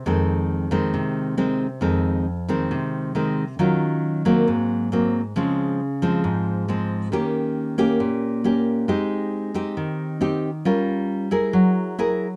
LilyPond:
\new Staff \with { instrumentName = "Nylon-string guitar" } { \time 4/4 \key f \minor \tempo 4 = 136 << { <ees aes c'>4. <ees aes c'>4. <ees aes c'>8 r8 | <ees aes c'>4 r8 <ees aes c'>4. <ees aes c'>8 r8 | <ges des' f'>4. <ges bes c'>4. <ges bes c'>8 r8 | <f aes c'>4 r8 <f aes c'>4. <f aes c'>4 |
<bes des' g'>4. <bes des' g'>4. <bes des' g'>4 | <c' ees' g'>4. <c' ees' g'>4. <c' ees' g'>8 r8 | <des' f' bes'>4. <e' aes' bes'>4. <fes' aes' bes'>8 r8 | } \\ { f,2 c2 | f,2 c2 | ees2 aes,2 | des2 aes,2 |
ees2 bes,2 | aes2 ees2 | g2 ges2 | } >> }